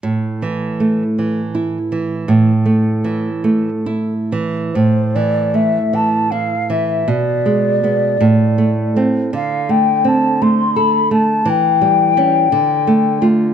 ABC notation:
X:1
M:6/8
L:1/8
Q:3/8=54
K:Am
V:1 name="Flute"
z6 | z6 | c d e a f e | d4- d z |
f g a c' b a | g4- g z |]
V:2 name="Nylon-string guitar" clef=bass
A,, E, A, E, E E, | A,, A, E, A, E E, | A,, E, A, E, E E, | B,, ^G, [G,B,] A,, A, [A,C] |
D, A, C A, A A, | E, G, [G,^C] D, A, [A,F] |]